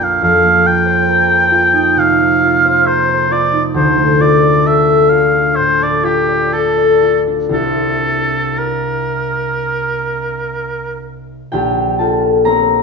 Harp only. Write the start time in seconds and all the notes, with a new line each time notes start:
Already playing: A#1 F2 A#3 F4 A#4 D5
0.00 D4
0.22 F2
0.44 A#3
0.65 F4
0.86 C5
1.08 A#4
1.30 C5
1.51 F4
1.73 D#4
1.96 C3
2.19 A#3
2.43 F4
2.64 C5
2.87 A#4
3.08 C5
3.31 F4
3.52 D#4
3.74 D2
3.98 A3
4.20 F4
4.42 D5
4.66 A4
4.89 D5
5.11 F4
5.33 D4
5.58 A2
5.80 A3
6.03 F4
6.28 D5
6.53 A4
6.77 D5
7.02 F4
7.27 D4
7.49 C2 C4 D4 E4 G4
11.52 A#1 G4 G5
11.99 F4 A4 A5
12.45 C4 A#4 A#5